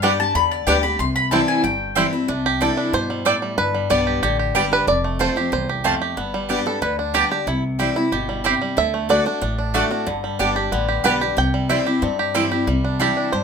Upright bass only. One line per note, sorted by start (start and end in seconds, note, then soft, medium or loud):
0.35 0.62 E2 medium
0.67 0.95 D2 medium
0.99 1.38 C2 medium
1.64 2.03 G1 medium
2.28 2.68 C2 medium
2.93 3.32 G2 medium
3.58 3.77 G1 medium
3.90 4.18 B1 medium
4.22 4.50 A1 medium
4.55 4.83 G1 medium
4.87 5.27 F1 medium
5.52 5.92 C2 medium
6.17 6.56 G1 medium
6.82 7.21 D2 medium
7.47 7.86 C2 medium
8.12 8.51 G1 medium
8.77 9.17 D2 medium
9.42 9.81 A1 medium
10.07 10.27 G1 medium
10.39 10.67 G1 medium
10.72 11.00 A1 medium
11.04 11.32 B1 medium
11.37 11.77 C2 medium
12.02 12.42 G2 medium
12.67 13.07 C2 medium
13.33 13.44 G2 medium